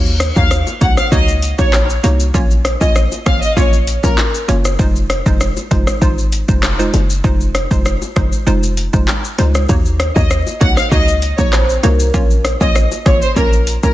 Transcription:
Already playing: D#2 A#3 D#4 F#4 C#5
0.06 shaker
0.20 cross-stick, closed hi-hat, shaker
0.36 D#2 A#3 D#4 F#4 C#5 F5, kick, shaker
0.51 cross-stick, shaker
0.67 high bongo, shaker
0.81 C2 A#3 D#4 F#4 C#5 F#5, kick, closed hi-hat, shaker
0.97 F5, cross-stick, shaker
1.12 C#2 A#3 D#4 F#4 C#5 D#5, kick, shaker
1.28 shaker
1.42 closed hi-hat, shaker
1.58 A#1 A#3 D#4 F#4 C#5, kick, shaker
1.73 cross-stick, clap, high bongo, shaker
1.90 shaker
2.04 C2 A#3 D#4 F#4 C#5, closed hi-hat, high bongo, low bongo, shaker
2.20 shaker
2.34 A#1 A#3 C#4 F4 C#5, kick, shaker
2.51 shaker
2.65 cross-stick, closed hi-hat, shaker
2.81 A#1 A#3 C#4 F4 C#5 D#5, kick, shaker
2.95 cross-stick, shaker
3.12 high bongo, shaker
3.26 G#1 A#3 C#4 F4 C#5 F5, kick, cross-stick, closed hi-hat, shaker
3.42 D#5, shaker
3.56 A#1 A#3 C#4 F4 C#5, kick, shaker
3.73 shaker
3.87 closed hi-hat, shaker
4.03 A#1 A#3 C#4 F4 A#4 C#5, kick, shaker
4.18 clap, high bongo, shaker
4.35 shaker
4.48 F#1 A#3 C#4 F4 C#5, closed hi-hat, high bongo, low bongo, shaker
4.65 cross-stick, shaker
4.79 F1 G#3 D#4 F4 C5, kick, shaker
4.96 shaker
5.10 cross-stick, closed hi-hat, shaker
5.26 F1 G#3 D#4 F4 C5, kick, shaker
5.40 cross-stick, shaker
5.57 high bongo, shaker
5.71 F1 G#3 D#4 F4 C5, kick, closed hi-hat, shaker
5.87 cross-stick, shaker
6.01 G#1 G#3 D#4 F4 C5, kick, shaker
6.18 shaker
6.32 closed hi-hat, shaker
6.48 F1 G#3 D#4 F4 C5, kick, shaker
6.63 cross-stick, clap, high bongo, shaker
6.79 G#3 D#4 F4 C5, shaker
6.94 F#1, closed hi-hat, high bongo, low bongo, shaker
7.10 shaker
7.24 F1 G#3 D#4 F4 C5, kick, shaker
7.41 shaker
7.55 cross-stick, closed hi-hat, shaker
7.71 F1 G#3 D#4 F4 C5, kick, shaker
7.85 cross-stick, shaker
8.02 high bongo, shaker
8.16 F#1 G#3 D#4 F4 C5, kick, cross-stick, closed hi-hat, low bongo, shaker
8.32 shaker
8.46 F1 G#3 D#4 F4 C5, shaker
8.63 shaker
8.77 closed hi-hat, shaker
8.93 F1 G#3 D#4 F4 C5, kick, shaker
9.08 clap, high bongo, shaker
9.24 shaker
9.38 C#2 G#3 D#4 F4 C5, closed hi-hat, high bongo, low bongo, shaker
9.55 cross-stick, shaker
9.69 D#2 A#3 D#4 F#4 C#5, kick, shaker
9.85 shaker
10.00 cross-stick, closed hi-hat, shaker
10.16 D#2 A#3 D#4 F#4 C#5 D#5, kick, shaker
10.30 cross-stick, shaker
10.47 high bongo, shaker
10.61 C2 A#3 D#4 F#4 C#5 F#5, kick, closed hi-hat, shaker
10.77 F5, cross-stick, shaker
10.91 C#2 A#3 D#4 F#4 C#5 D#5, kick, shaker
11.08 shaker
11.22 closed hi-hat, shaker
11.38 A#1 A#3 D#4 F#4 C#5, kick, shaker
11.53 C5, cross-stick, clap, high bongo, shaker
11.69 shaker
11.83 C2 A#3 D#4 F#4 A#4 C#5, closed hi-hat, high bongo, low bongo, shaker
12.00 shaker
12.14 A#1 A#3 C#4 F4 C#5, kick, shaker
12.30 shaker
12.45 cross-stick, closed hi-hat, shaker
12.61 A#1 A#3 C#4 F4 C#5 D#5, kick, shaker
12.75 cross-stick, shaker
12.91 high bongo, shaker
13.06 G#1 A#3 C#4 F4 C#5, kick, cross-stick, closed hi-hat, shaker
13.22 C5, shaker
13.36 A#1 A#3 C#4 F4 A#4 C#5, kick, shaker
13.53 shaker
13.67 closed hi-hat, shaker
13.83 A#1 A#3 C#4 F4 A#4 C#5, kick, shaker

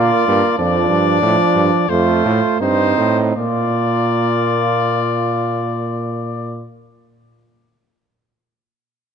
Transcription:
Already playing: A#2 A#3 F4 D5
0.28 G2 A#3
0.58 F2 F3 D4 D5
0.90 G2
1.22 A2 F3
1.55 G2
1.89 F2 A3 F4 C5
2.25 A2
2.60 G2 C4 D#4 C5
2.98 A2
3.36 A#2 A#3 F4 D5

